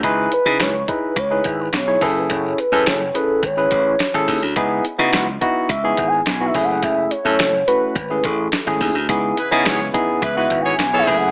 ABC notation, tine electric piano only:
X:1
M:4/4
L:1/16
Q:1/4=106
K:C#m
V:1 name="Tine electric piano"
[DEGB]2 z [DEGB]2 z [DEGB]2 z [DEGB]3 z [DEGc] [CEGA]2- | [CEGA]2 z [CEGA]2 z [CEGB]2 z [CEGB]3 z [CEGA]2 z | [B,DEG]2 z [B,DEF]2 z [B,DEF]2 z [B,DEG]3 z [B,DEF] [A,CEG]2- | [A,CEG]2 z [A,CEA]2 z [A,CEF]2 z [A,CEG]3 z [A,CEG]2 z |
[B,DEG]2 z [B,DEG]2 z [B,DEG]2 z [B,DEF]3 z [B,DEG] [A,CEG]2 |]